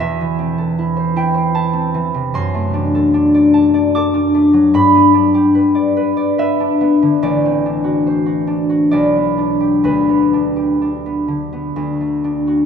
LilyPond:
\new Staff \with { instrumentName = "Harp" } { \time 3/4 \key a \dorian \tempo 4 = 73 << { e''4. g''8 a''4 | \key g \major c'''2 d'''4 | b''2 e''4 | d''2 d''4 |
b'2 r4 | } \\ { <e, e'>16 e16 c'16 a'16 e'16 c''16 e'16 c''16 e'16 c'16 e16 c16 | fis,16 a16 d'16 a'16 d'16 d''16 a''16 d''16 a'16 d'16 a16 fis16 | g,16 b16 d'16 g'16 b'16 d''16 b'16 d''16 b'16 d'16 b16 d16 | a,,16 c'16 d'16 fis'16 c''16 fis'16 d'16 fis'16 b,,16 b16 d'16 g'16 |
d,16 b16 d'16 g'16 d'16 b16 d16 b16 d,16 a16 d'16 fis'16 | } >> }